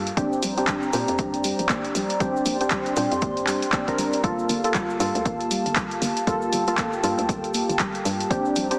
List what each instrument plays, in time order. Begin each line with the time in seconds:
Already playing: fm bass G2, analog synth pad A#3 G4 F5 A5, synth stab A#3 F4 A4
0.07 closed hi-hat, cabasa
0.17 fm bass A#1, synth arpeggio sound A#3, synth stab C4 D4 G4, analog synth pad C5 D5 A#5, kick, closed hi-hat, cabasa
0.33 cabasa
0.43 fm bass A#1, synth arpeggio sound G3, open hi-hat, cabasa
0.57 synth stab C4 D4 G4, closed hi-hat, cabasa
0.68 synth arpeggio sound G3, kick, clap, closed hi-hat, cabasa
0.82 cabasa
0.93 fm bass A#2, synth arpeggio sound A#3, synth stab C4 D4 G4, open hi-hat, cabasa
1.08 fm bass F2, closed hi-hat, cabasa
1.18 synth arpeggio sound G3, kick, closed hi-hat, cabasa
1.34 closed hi-hat, cabasa
1.44 synth arpeggio sound G3, open hi-hat, cabasa
1.59 fm bass A#1, closed hi-hat, cabasa
1.69 synth arpeggio sound A#3, kick, clap, closed hi-hat, cabasa
1.85 closed hi-hat, cabasa
1.95 fm bass A#1, synth arpeggio sound G3, open hi-hat, cabasa
2.09 closed hi-hat, cabasa
2.20 fm bass A#1, synth arpeggio sound G3, synth stab C4 D4 G4, analog synth pad C6, kick, closed hi-hat, cabasa
2.36 cabasa
2.46 fm bass A#1, synth arpeggio sound A#3, open hi-hat, cabasa
2.61 synth stab C4 D4 G4, closed hi-hat, cabasa
2.70 synth arpeggio sound G3, kick, clap, closed hi-hat, cabasa
2.86 closed hi-hat, cabasa
2.96 fm bass A#2, synth arpeggio sound G3, synth stab C4 D4 G4, open hi-hat, cabasa
3.12 fm bass F2, closed hi-hat, cabasa
3.21 synth arpeggio sound A#3, kick, closed hi-hat, cabasa
3.37 closed hi-hat, cabasa
3.47 synth arpeggio sound G3, clap, open hi-hat, cabasa
3.62 closed hi-hat, cabasa
3.72 synth arpeggio sound A#3, synth stab C4 D4 G4, kick, clap, closed hi-hat, cabasa
3.88 synth stab C4 D4 A#4, kick, closed hi-hat, cabasa
3.98 fm bass G1, synth arpeggio sound G3, open hi-hat, cabasa
4.13 synth arpeggio sound D4, closed hi-hat, cabasa
4.24 fm bass G1, synth arpeggio sound G3, synth stab A#3 F4 A4, analog synth pad A#3 G4 F5 A5, kick, closed hi-hat, cabasa
4.39 cabasa
4.49 fm bass G1, synth arpeggio sound A#3, open hi-hat, cabasa
4.64 synth stab A#3 F4 A4, closed hi-hat, cabasa
4.74 synth arpeggio sound G3, kick, clap, closed hi-hat, cabasa
4.90 cabasa
5.00 fm bass G2, synth arpeggio sound G3, synth stab A#3 F4 A4, open hi-hat, cabasa
5.15 fm bass D2, closed hi-hat, cabasa
5.25 synth arpeggio sound A#3, kick, closed hi-hat, cabasa
5.41 closed hi-hat, cabasa
5.51 synth arpeggio sound G3, open hi-hat, cabasa
5.66 fm bass G1, closed hi-hat, cabasa
5.76 synth arpeggio sound G3, kick, clap, closed hi-hat, cabasa
5.91 closed hi-hat, cabasa
6.02 fm bass G1, synth arpeggio sound A#3, open hi-hat, cabasa
6.17 closed hi-hat, cabasa
6.27 fm bass G1, synth arpeggio sound G3, synth stab A#3 F4 A4, analog synth pad G5, kick, closed hi-hat, cabasa
6.42 cabasa
6.53 fm bass G1, synth arpeggio sound G3, open hi-hat, cabasa
6.67 synth stab A#3 F4 A4, closed hi-hat, cabasa
6.78 synth arpeggio sound A#3, kick, clap, closed hi-hat, cabasa
6.93 cabasa
7.03 fm bass G2, synth arpeggio sound G3, synth stab A#3 F4 A4, open hi-hat, cabasa
7.18 fm bass D2, closed hi-hat, cabasa
7.29 synth arpeggio sound G3, kick, closed hi-hat, cabasa
7.44 closed hi-hat, cabasa
7.54 synth arpeggio sound A#3, open hi-hat, cabasa
7.69 fm bass G1, closed hi-hat, cabasa
7.79 synth arpeggio sound G3, kick, clap, closed hi-hat, cabasa
7.95 closed hi-hat, cabasa
8.05 fm bass G2, synth arpeggio sound G3, open hi-hat, cabasa
8.20 closed hi-hat, cabasa
8.30 fm bass A#1, synth arpeggio sound A#3, synth stab C4 D4 G4, analog synth pad C5 D5 A#5, kick, closed hi-hat, cabasa
8.45 cabasa
8.56 fm bass A#1, synth arpeggio sound G3, open hi-hat, cabasa
8.71 synth stab C4 D4 G4, closed hi-hat, cabasa